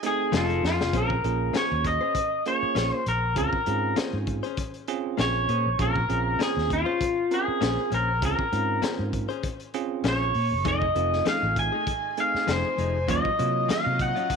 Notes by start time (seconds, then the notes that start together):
Already playing: G#4 D#5 G#5
0.03 A3 C4 D#4 G#4, closed hi-hat
0.32 F1 F3 A3 D#4 G#4, snare, closed hi-hat
0.36 F4 A4
0.49 closed hi-hat
0.63 F2 F4, snare
0.76 F1 G#4
0.81 snare
0.93 A#1 A#3 C4 C#4 F4 G#4 A#4 C5, kick, closed hi-hat
1.10 kick
1.24 A#1 A#3 C#4 F4 G#4, closed hi-hat
1.54 A#3 C#4 G#4 C5 C#5, muted fingered electric bass stroke, snare, closed hi-hat
1.72 D#2
1.85 D#5, kick, closed hi-hat
2.01 C#4 G#4 C5
2.15 kick, closed hi-hat
2.45 A#3 C#4 F4 G#4 C#5, closed hi-hat
2.62 muted fingered electric bass stroke
2.75 A#1 A#3 C#4 G#4 C5, snare, closed hi-hat
2.92 C5
3.06 A#1 A#4, closed hi-hat
3.36 C#2 C4 C#4 F4 G#4 A#4, kick, closed hi-hat
3.53 kick
3.66 G#2 C4 C#4 F4 G#4, closed hi-hat
3.96 A#3 C#4 G#4 C5, muted fingered electric bass stroke, snare, closed hi-hat
4.13 G#2
4.27 kick, closed hi-hat
4.43 C#4 G#4 C5, closed hi-hat
4.57 kick, closed hi-hat
4.74 closed hi-hat
4.88 C4 C#4 F4 G#4, closed hi-hat
5.18 A#1 A#3 C#4 G#4 C5 C#5, snare, closed hi-hat
5.48 A#2 A#3 C#4 G#4 C5, closed hi-hat
5.66 A#1
5.79 A#1 C4 C#4 F4 G#4 A#4, kick, closed hi-hat
5.96 kick
6.09 A#1 C4 C#4 F4 G#4, closed hi-hat
6.39 A#3 C#4 G#4 C5, snare, closed hi-hat
6.57 D#2, snare
6.70 F4, kick, closed hi-hat
6.86 C#4 G#4 C5
7.01 kick, closed hi-hat
7.31 C4 C#4 F4 G#4 A#4, closed hi-hat
7.48 muted fingered electric bass stroke
7.61 A#1 A#3 C#4 G#4 C5, snare, closed hi-hat
7.91 A#1 A#3 C#4 G#4 A#4 C5, closed hi-hat
8.22 C#2 C4 C#4 F4 G#4 A#4, kick, closed hi-hat
8.39 muted fingered electric bass stroke, kick
8.53 G#2 C4 C#4 F4 A#4, closed hi-hat
8.82 A#3 C#4 G#4 C5, muted fingered electric bass stroke, snare, closed hi-hat
8.99 G#2
9.13 kick, closed hi-hat
9.29 C#4 G#4 C5, closed hi-hat
9.43 kick, closed hi-hat
9.60 closed hi-hat
9.74 C4 C#4 F4 G#4, closed hi-hat
10.04 A#1 A#3 C#4 G#4 C5, snare, closed hi-hat
10.08 C#5
10.34 A#2, open hi-hat
10.52 F#1
10.65 F1 F3 A3 C4 D#4 G#4 D#5 G#5, kick, closed hi-hat
10.82 kick
10.96 F1 A3 C4 D#4 F4, closed hi-hat
11.13 snare
11.25 F3 A3 D#4 G#4 F5, muted fingered electric bass stroke, snare, closed hi-hat
11.43 A1
11.56 G#5, kick, closed hi-hat
11.72 A3 D#4 G#4
11.87 kick, closed hi-hat
12.17 A3 C4 D#4 G#4 F5, closed hi-hat
12.34 muted fingered electric bass stroke, snare
12.47 F1 F3 A3 D#4 G#4 C5, snare, closed hi-hat
12.77 F1 F3 A3 D#4 G#4, closed hi-hat
13.08 D#2 D#3 F#3 A#3 C#4 D#4 F4 C#5 D#5, kick, closed hi-hat
13.25 kick
13.39 C3 F#3 A#3 F4 C#5, closed hi-hat
13.68 D#3 F#3 C#4 F4 F5, muted fingered electric bass stroke, snare, closed hi-hat
13.86 C3
13.99 F#5, kick, closed hi-hat
14.16 F#3 C#4 F4, closed hi-hat
14.30 kick, closed hi-hat